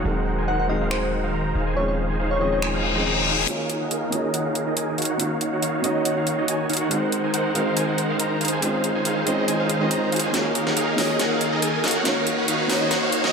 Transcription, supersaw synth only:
0.05 D#3 D#4 A#4 C5 F#5
0.38 D#3 D#4 A#4 C5 G#5
0.48 D#3 D#4 A#4 C5 F#5
0.69 D#3 D#4 A#4 C5 F5
0.81 D#3 D#4 A#4 C5 F5
0.91 D#3 D#4 A#4 C5 G#5
1.02 D#3 D#4 A#4 C5 F#5
1.24 D#3 D#4 A#4 C5 F5
1.34 D#3 D#4 A#4 C5 A#5
1.55 D#3 D#4 G#4 C5 F5
1.67 D#3 D#4 G#4 C5 G#5
1.77 D#3 D#4 G#4 C5 F5
2.10 D#3 D#4 G#4 C5 G#5
2.20 D#3 D#4 G#4 C5 F5
2.41 D#3 D#4 G#4 C5 D#5
2.52 D#3 D#4 G#4 C5 D#5
2.62 D#3 D#4 G#4 C5 G#5
2.74 D#3 D#4 G#4 C5 F5
2.95 D#3 D#4 G#4 C5 D#5
3.05 D#3 D#4 G#4 C5 A#5
3.27 D#3 D#4 G#4 C5 F5
3.38 D#3 D#4 G#4 C5 G#5
3.48 D#3 D#4 G#4 A#4 F5
3.81 D#3 D#4 G#4 A#4 F#5
3.91 D#3 D#4 G#4 A#4 F5
4.12 D#3 D#4 G#4 A#4 D#5
4.24 D#3 D#4 G#4 A#4 D#5
4.34 D#3 D#4 G#4 A#4 F#5
4.45 D#3 D#4 G#4 A#4 F5
4.67 D#3 D#4 G#4 A#4 D#5
4.77 D#3 D#4 G#4 A#4 G#5
4.98 D#3 D#4 F#4 C#5 F5
5.10 D#3 D#4 F#4 C#5 F#5
5.19 D#3 D#4 F#4 C#5 F5
5.53 D#3 D#4 F#4 C#5 F#5
5.62 D#3 D#4 F#4 C#5 F5
5.84 D#3 D#4 F#4 C#5 D#5
5.95 D#3 D#4 F#4 C#5 D#5
6.05 D#3 D#4 F#4 C#5 F#5
6.17 D#3 D#4 F#4 C#5 F5
6.38 D#3 D#4 F#4 C#5 D#5
6.48 D#3 D#4 F#4 C#5 G#5
6.69 D#3 D#4 F#4 C#5 F5
6.81 D#3 D#4 F#4 C#5 F#5
6.91 D#3 D#4 A#4 C5 F#5
7.24 D#3 D#4 A#4 C5 G#5
7.34 D#3 D#4 A#4 C5 F#5
7.55 D#3 D#4 A#4 C5 F5
7.67 D#3 D#4 A#4 C5 F5
7.77 D#3 D#4 A#4 C5 G#5
7.88 D#3 D#4 A#4 C5 F#5
8.10 D#3 D#4 A#4 C5 F5
8.19 D#3 D#4 A#4 C5 A#5
8.41 D#3 D#4 G#4 C5 F5
8.52 D#3 D#4 G#4 C5 G#5
8.62 D#3 D#4 G#4 C5 F5
8.95 D#3 D#4 G#4 C5 G#5
9.05 D#3 D#4 G#4 C5 F5
9.27 D#3 D#4 G#4 C5 D#5
9.38 D#3 D#4 G#4 C5 D#5
9.48 D#3 D#4 G#4 C5 G#5
9.59 D#3 D#4 G#4 C5 F5
9.81 D#3 D#4 G#4 C5 D#5
9.91 D#3 D#4 G#4 C5 A#5
10.12 D#3 D#4 G#4 C5 F5
10.24 D#3 D#4 G#4 C5 G#5
10.34 D#3 D#4 G#4 A#4 F5
10.67 D#3 D#4 G#4 A#4 F#5
10.77 D#3 D#4 G#4 A#4 F5
10.98 D#3 D#4 G#4 A#4 D#5
11.09 D#3 D#4 G#4 A#4 D#5
11.19 D#3 D#4 G#4 A#4 F#5
11.31 D#3 D#4 G#4 A#4 F5
11.52 D#3 D#4 G#4 A#4 D#5
11.62 D#3 D#4 G#4 A#4 G#5
11.84 D#3 D#4 F#4 C#5 F5
11.95 D#3 D#4 F#4 C#5 F#5
12.05 D#3 D#4 F#4 C#5 F5
12.38 D#3 D#4 F#4 C#5 F#5
12.48 D#3 D#4 F#4 C#5 F5
12.69 D#3 D#4 F#4 C#5 D#5
12.81 D#3 D#4 F#4 C#5 D#5
12.91 D#3 D#4 F#4 C#5 F#5
13.02 D#3 D#4 F#4 C#5 F5
13.24 D#3 D#4 F#4 C#5 D#5

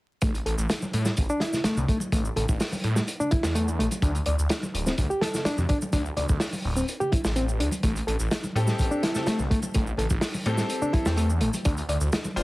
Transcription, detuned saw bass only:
0.22 A1
0.46 A1
0.58 A1
0.93 A2
1.18 A1
1.77 C2
2.12 A1
2.36 A1
2.49 A1
2.84 A2
3.44 E2
3.79 A1
4.02 D2
4.27 D2
4.39 D2
4.74 D1
4.98 D2
5.58 F2
5.93 D2
6.17 D2
6.29 D2
6.65 D1
7.25 A1
7.60 D2
7.83 A1
8.07 A1
8.20 A1
8.55 A2
8.79 A1
9.39 C2
9.75 A1
9.98 A1
10.10 A1
10.46 A2
11.06 E2
11.41 A1
11.66 D2
11.88 D2
12.01 D2
12.36 D1

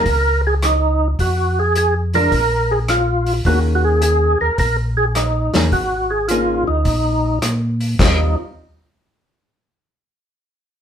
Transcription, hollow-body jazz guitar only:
2.14 F3 G#3 D4
3.46 D#3 A#3 C#4 G#4
5.54 D#3 A#3 C#4 G#4
6.31 D#3 A#3 C#4 G#4
8.00 D#3 G3 C4 F4

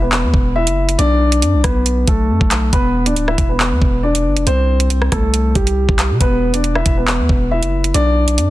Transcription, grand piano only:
0.02 B3 B4
0.56 E4 E5
0.99 D4 D5
1.63 B3 B4
2.08 A3 A4
2.73 B3 B4
3.06 D4 D5
3.28 E4 E5
3.49 B3 B4
4.03 D4 D5
4.47 C4 C5
5.12 A3 A4
5.55 G3 G4
6.21 B3 B4
6.54 D4 D5
6.76 E4 E5
6.98 B3 B4
7.51 E4 E5
7.94 D4 D5

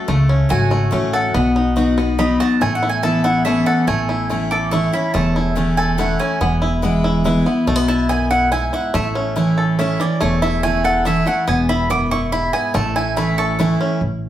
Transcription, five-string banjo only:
Already playing: F#4 A4
0.08 A3
0.29 C#4
0.50 F#4
0.71 A3
0.92 C#4
1.13 A4
1.34 B3
1.56 D#4
1.77 F#4
1.98 B3
2.19 D#4
2.40 F#4
2.61 A3
2.83 E4
3.03 A4
3.25 E4
3.46 A3
3.67 A4
3.88 A3
4.09 E4
4.30 A3
4.52 A4
4.73 E4
4.94 C#4
5.15 A3
5.36 E4
5.57 A3
5.78 A4
5.99 E4
6.20 C#4
6.41 B3
6.62 E4
6.83 B3
7.04 E4
7.25 E4
7.46 B3
7.67 A3
7.76 B3
7.88 E4
8.09 B3
8.30 E4
8.52 E4
8.73 E4
8.94 A3
9.15 C#4
9.36 E4
9.58 A4
9.79 C#4
10.00 E3
10.21 A3
10.42 E4
10.63 A3
10.84 A4
11.05 E4
11.27 A3
11.48 B3
11.69 E4
11.90 B3
12.11 E4
12.32 E4
12.54 B3
12.75 A3
12.96 E4
13.17 A3
13.39 A4
13.60 E4
13.81 C#4

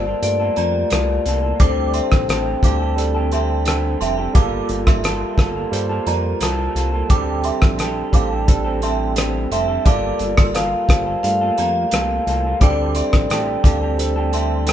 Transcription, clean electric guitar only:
Already playing: D3
0.06 A#3 F4 A4
0.40 A#3 F4 A4
0.57 G3 A#3 F4
0.91 G3 A#3 F4 A4
1.26 G3 A#3 F4 A4
1.43 A#3 F4 A4
1.60 D3 C4 G4 A4
2.29 D3 C4 G4 A4
2.63 D3 C4 G4 A4
2.80 C4 G4 A4
3.15 C4 G4 A4
3.32 D3 C4 G4 A4
3.67 D3 C4 G4 A4
4.00 D3 C4 G4 A4
4.18 C4 G4 A4
4.35 G3 A#3 F4 A4
5.03 G3 A#3 F4 A4
5.38 G3 A#3 F4 A4
5.55 A#3 F4 A4
5.89 A#3 F4 A4
6.07 G3 A#3 F4
6.41 G3 A#3 F4 A4
6.75 G3 A#3 F4 A4
6.92 A#3 F4 A4
7.09 D3 C4 G4 A4
7.78 D3 C4 G4 A4
8.13 D3 C4 G4 A4
8.30 C4 G4 A4
8.64 C4 G4 A4
8.82 D3 C4 G4 A4
9.16 D3 C4 G4 A4
9.50 D3 C4 G4 A4
9.68 C4 G4 A4
9.85 G3 A#3 F4 A4
10.54 G3 A#3 F4 A4
10.88 G3 A#3 F4 A4
11.06 A#3 F4 A4
11.41 A#3 F4 A4
11.58 G3 A#3 F4
11.93 G3 A#3 F4 A4
12.27 G3 A#3 F4 A4
12.44 A#3 F4 A4
12.61 D3 C4 G4 A4
13.30 D3 C4 G4 A4
13.65 D3 C4 G4 A4
13.81 C4 G4 A4
14.16 C4 G4 A4
14.32 D3 C4 G4 A4
14.67 D3 C4 G4 A4

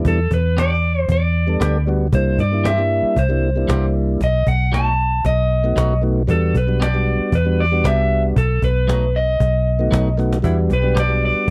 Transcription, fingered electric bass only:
0.05 E2
0.31 E2
1.08 E2
1.60 D2
2.13 C2
2.39 G2
3.03 muted fingered electric bass stroke
3.16 C2
3.68 C2
4.20 B1
4.47 B1
5.24 B1
5.76 B1
6.28 E2
6.55 B1
7.19 muted fingered electric bass stroke
7.32 E2
7.84 C2
8.36 B1
8.62 B1
9.40 B1
9.92 B1
10.44 E2
10.70 B1
11.35 muted fingered electric bass stroke

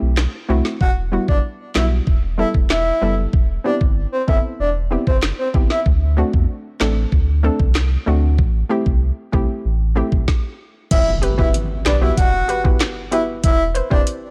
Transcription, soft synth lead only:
0.81 F#5
1.28 D5
1.76 E5
2.39 E5
2.70 E5
3.65 D5
4.12 C5
4.28 E5
4.60 D5
5.07 C5
5.39 C5
5.70 E5
10.91 E5
11.38 E5
11.86 D5
12.02 E5
12.17 F#5
13.12 E5
13.44 E5
13.91 D5

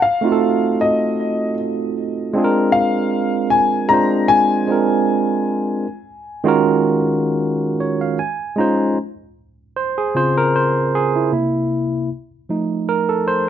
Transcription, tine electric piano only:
0.21 A3 C4 D#4 F4
0.26 F#4
0.32 A4
2.33 G#3 C4 D4 F4
2.38 G#4
2.44 A#4
3.89 G#3 C4 D4 F4
3.93 C5
4.67 G#3 C4 D4 F4
4.72 A#4
6.44 D#3 G#3 C#4 F4 F#4
6.48 A#4
7.80 C#5
8.01 F5
8.19 G#5
8.56 G#3 C#4 D#4 F4 A#5
8.61 C5
9.76 C5
9.98 G#4
10.15 C#3 C4 F4 C5
10.38 A#4
10.56 C5
10.95 G#4
11.16 E4
11.32 C3 A#3 E4
12.49 F3 A3 D#4
12.89 A#4
13.09 A4
13.28 C5

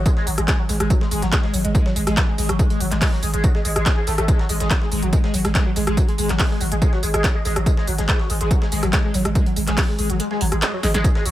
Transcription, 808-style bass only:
0.27 G#1
0.38 G#1
0.69 G#1
0.80 G#1
1.11 G#1
1.22 G#1
1.54 G#1
1.65 G#1
1.96 G#1
2.07 G#1
2.38 G#1
2.49 G#1
2.80 G#1
2.91 G#1
3.23 G#1
3.34 G#1
3.65 G#1
3.76 G#1
4.07 G#1
4.18 G#1
4.49 G#1
4.60 G#1
4.92 G#1
5.03 G#1
5.34 G#1
5.45 G#1
5.76 G#1
5.87 G#1
6.18 G#1
6.29 G#1
6.61 G#1
6.72 G#1
7.03 G#1
7.14 G#1
7.45 G#1
7.56 G#1
7.88 G#1
7.99 G#1
8.30 G#1
8.41 G#1
8.72 G#1
8.83 G#1
9.14 G#1
9.25 G#1
9.57 G#1
9.68 G#1
9.99 G#1
10.10 G#1
10.41 G#1
10.52 G#1
10.83 G#1
10.94 G#1
11.26 G#1

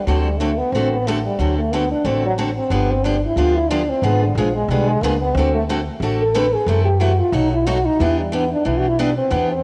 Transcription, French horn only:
0.05 F#3
0.23 G3
0.38 A3
0.58 B3
0.71 C4
0.92 B3
1.07 A3
1.25 G3
1.39 F#3
1.58 A3
1.73 B3
1.92 D4
2.06 C4
2.26 F#3
2.58 C4
2.72 B3
2.90 C4
3.06 D4
3.25 E4
3.37 F4
3.56 E4
3.69 D4
3.89 C4
4.03 B3
4.23 D3
4.37 F3
4.55 G#3
4.70 G3
4.88 G#3
5.02 A#3
5.21 B3
5.34 C4
5.55 A3
6.22 A4
6.35 B4
6.54 G#4
6.68 A4
6.85 G4
7.00 F#4
7.19 F4
7.34 D#4
7.53 E4
7.66 F#4
7.85 D#4
8.00 E4
8.20 G3
8.33 B3
8.52 D4
8.66 E4
8.78 F#4
8.88 E4
8.99 D4
9.17 C4
9.31 B3
9.51 C4

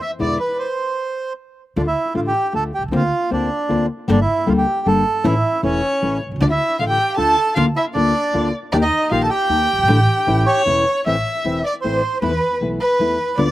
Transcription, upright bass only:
0.21 E2
1.76 D2
2.15 A1
2.54 D2
2.79 B1
2.83 C2
2.88 C#2
2.93 D2
3.32 D2
3.70 D2
4.10 G1
4.48 D2
4.86 G1
5.25 A1
5.63 E1
6.02 A1
6.27 B1
6.32 C2
6.36 C#2
6.40 D2
6.79 A1
7.18 D2
7.57 D2
7.96 D2
8.34 D2
8.73 D#2
9.11 A#1
9.49 D#2
9.73 F#1
9.78 G1
9.83 G#1
9.88 A1
10.28 A1
10.67 E1
11.06 A1
11.45 E1
11.84 A1
12.22 E2
12.61 B1
13.00 E2
13.38 D2

